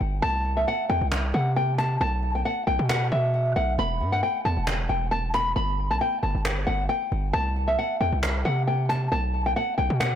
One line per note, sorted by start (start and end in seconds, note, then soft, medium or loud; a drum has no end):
0.00 0.22 G1 loud
0.00 0.20 G5 medium
0.00 cajon slap soft
0.22 0.66 C2 loud
0.22 0.55 A5 loud
0.22 cajon slap soft
0.45 cajon slap soft
0.57 0.65 E5 medium
0.67 0.85 F#5 medium
0.67 cajon slap soft
0.89 1.01 E2 loud
0.89 1.06 G5 medium
1.01 1.33 C2 loud
1.12 cajon slap loud
1.34 1.98 C3 loud
1.34 1.51 F#5 medium
1.34 cajon slap soft
1.56 1.73 G5 medium
1.56 cajon slap soft
1.78 1.95 A5 medium
1.78 cajon slap medium
2.01 2.43 B1 loud
2.01 2.33 A5 loud
2.01 cajon slap soft
2.23 cajon slap soft
2.30 cajon slap soft
2.35 2.43 G5 medium
2.35 cajon slap soft
2.45 2.62 F#5 medium
2.45 cajon slap soft
2.67 2.79 B1 loud
2.67 2.84 G5 medium
2.67 cajon slap soft
2.79 3.10 B2 loud
2.89 3.06 F#5 medium
2.89 cajon slap loud
3.12 3.54 B2 loud
3.12 3.54 E5 medium
3.34 cajon slap soft
3.46 cajon slap soft
3.56 3.78 B1 loud
3.56 3.73 F#5 medium
3.56 cajon slap soft
3.78 4.02 E1 loud
3.78 4.11 B5 loud
3.78 cajon slap soft
4.01 4.22 G2 loud
4.01 cajon slap soft
4.12 4.20 F#5 medium
4.23 4.40 G5 medium
4.23 cajon slap soft
4.45 4.56 E2 loud
4.45 4.62 A5 medium
4.57 4.88 E1 loud
4.67 cajon slap loud
4.89 5.54 E1 loud
4.89 5.06 G5 medium
4.89 cajon slap soft
5.11 5.28 A5 medium
5.11 cajon slap soft
5.34 5.51 B5 medium
5.34 cajon slap medium
5.56 5.92 G1 loud
5.56 5.88 B5 loud
5.56 cajon slap soft
5.90 6.00 B1 loud
5.90 5.98 A5 medium
6.01 6.18 G5 medium
6.01 cajon slap soft
6.23 6.34 G1 loud
6.23 6.40 A5 medium
6.23 cajon slap soft
6.30 cajon slap soft
6.35 6.66 G1 loud
6.35 cajon slap soft
6.45 cajon slap loud
6.53 cajon slap soft
6.60 cajon slap soft
6.67 6.89 G1 loud
6.67 6.84 F#5 medium
6.89 7.31 G5 medium
6.89 cajon slap soft
7.12 7.33 G1 loud
7.12 cajon slap soft
7.33 7.77 C2 loud
7.33 7.66 A5 loud
7.33 cajon slap medium
7.56 cajon slap soft
7.68 7.76 E5 medium
7.79 7.95 F#5 medium
7.79 cajon slap soft
8.01 8.12 E2 loud
8.01 8.18 G5 medium
8.12 8.44 C2 loud
8.23 cajon slap loud
8.45 9.09 C3 loud
8.45 8.62 F#5 medium
8.45 cajon slap soft
8.67 8.84 G5 medium
8.67 cajon slap soft
8.89 9.06 A5 medium
8.89 cajon slap medium
9.12 9.54 B1 loud
9.12 9.44 A5 loud
9.12 cajon slap soft
9.34 cajon slap soft
9.41 cajon slap soft
9.46 9.54 G5 medium
9.46 cajon slap soft
9.56 9.73 F#5 medium
9.56 cajon slap soft
9.78 9.90 B1 loud
9.78 9.95 G5 medium
9.78 cajon slap soft
9.90 10.15 B2 loud
10.00 10.15 F#5 medium
10.00 cajon slap loud